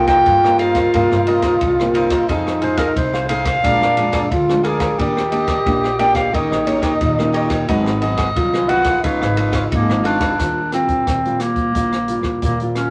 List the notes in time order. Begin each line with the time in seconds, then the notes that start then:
Already playing: C2 C3 A#3 D#4 F4 G4
0.07 D#4 A#4 C5 D#5 G5, kick, cross-stick, ride
0.26 G2, kick, ride
0.43 A#3 D#4 G4 A#4 C5 D#5, cross-stick
0.58 D#4 A#4 C5 D#5 F5, ride
0.75 A#4 C5 D#5, kick, cross-stick, ride
0.94 G2 C3 A#3 D#4 G4 A#4 C5 D#5, kick, ride
1.11 G2 A#4 C5 D#5, cross-stick
1.27 A#3 D#4 G4 A#4 C5 D#5, ride
1.42 D#4 A#4 C5 D#5, kick, cross-stick, ride
1.61 C2 G2, kick, ride
1.80 A#3 D#4 G4, cross-stick
1.94 D#4 A#4 C5 D#5, ride
2.10 A#4 C5 D#5, kick, cross-stick, ride
2.28 F2 F3 C4 D#4 G#4 C5 F5, kick, ride
2.47 cross-stick
2.61 C4 D#4 G#4 C5 F5, ride
2.77 D#4 G#4 A#4 C5 F5, kick, cross-stick, ride
2.96 C2 C3 C4 D#4 G#4 C5, kick, ride
3.14 G#4 C5 F5, cross-stick
3.29 C4 D#4 G#4 C5 F5, ride
3.45 G#4 C5 F5, kick, cross-stick, ride
3.64 A#1 A#2 F3 G#3 D4 G#4 A#4 D5 F5, kick, ride
3.80 F2 A#4 D5 F5, cross-stick
3.97 F3 G#3 D4 G#4 A#4 D5 F5, ride
4.12 G#4 A#4 D5 F5, kick, cross-stick, ride
4.31 D2 F2 F4, kick, ride
4.49 F3 G#3 D4, cross-stick
4.63 G#4 A#4 D5 F5, ride
4.79 A#4 D5 F5, kick, cross-stick, ride
4.99 D#2 D#3 A#3 D4 G4 D5 D#5, kick, ride
5.17 cross-stick
5.31 A#3 D4 G4 D5 D#5, ride
5.47 D4 G4 D5 D#5, kick, cross-stick, ride
5.66 A#1 A#2 A#3 D4 G4, kick, ride
5.84 G4 D5 D#5, cross-stick
5.99 A#3 D4 G4 D5 D#5 G5, ride
6.15 G4 D5 D#5 F5, kick, cross-stick, ride
6.33 D#2 D#3 A#3 C#4 D#4 G4 C#5 D#5, kick, ride
6.51 A#1 G4 C#5 D#5, cross-stick
6.65 A#3 C#4 D#4 G4 C#5 D#5, ride
6.82 D#4 G4 C#5 D#5, kick, cross-stick, ride
7.01 D#2 A#2, kick, ride
7.19 A#3 C#4 G4, cross-stick
7.32 D#4 G4 C#5 D#5, ride
7.49 G4 C#5 D#5, kick, cross-stick, ride
7.68 G#1 G#2 F#3 B3 D#4 F#4 G#4 B4 D#5, kick, ride
7.86 cross-stick
8.01 F#3 B3 D#4 F#4 G#4 B4 D#5, ride
8.17 F#4 G#4 B4 D#5, kick, cross-stick, ride
8.36 C2 D#3 F#3 B3 D#4 F4, kick, ride
8.54 G#4 B4 D#5, cross-stick
8.69 F#3 B3 D#4 F#4 G#4 B4 D#5 F#5, ride
8.84 G#4 B4 D#5, kick, cross-stick, ride
9.03 C#2 C#3 F3 B3 D#4 F4 B4 C#5 F5, kick, ride
9.21 G#1 B4 C#5 F5, cross-stick
9.36 F3 B3 D#4 F4 B4 C#5 F5, ride
9.52 F4 B4 C#5 F5, kick, cross-stick, ride
9.70 G#1 G#2 A#3 D#4, kick, ride
9.90 F3 B3 D#4, cross-stick
10.04 D4 F4 B4 C#5 F5, ride
10.20 B4 C#5 F5, kick, cross-stick, ride
10.39 D#2 D#3 G3 C4 F4, kick, cross-stick, closed hi-hat
10.72 G3 C4 F4, cross-stick, closed hi-hat
10.86 A#1, kick, closed hi-hat
11.07 D#2 A#2, kick, cross-stick, closed hi-hat
11.25 G3 C4 F4, closed hi-hat
11.40 A#3, cross-stick, closed hi-hat
11.56 kick, closed hi-hat
11.75 A#1 D#3 G3 C4 F4, kick, closed hi-hat
11.92 cross-stick, closed hi-hat
12.08 G3 C4 F4, closed hi-hat
12.21 A#1, kick, cross-stick
12.42 D#2 A#2 A#3, kick, closed hi-hat
12.60 G3 C4 F4, closed hi-hat
12.75 C#4, cross-stick, closed hi-hat